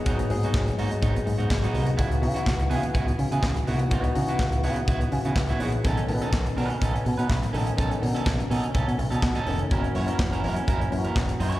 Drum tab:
HH |xxox-xoxxxox-xox|xxox-xoxxxox-xox|xxox-xoxxxox-xox|xxox-xoxxxox-xox|
CP |----x-------x---|----x-------x---|----x-------x---|----x-------x---|
SD |----o-------o---|----o-------o---|----o-------o---|----o-------o---|
BD |o---o---o---o---|o---o---o---o---|o---o---o---o---|o---o---o---o---|

HH |xxox-xoxxxox-xox|xxox-xoxxxox-xox|
CP |----x-------x---|----x-------x---|
SD |----o-------o---|----o-------o---|
BD |o---o---o---o---|o---o---o---o---|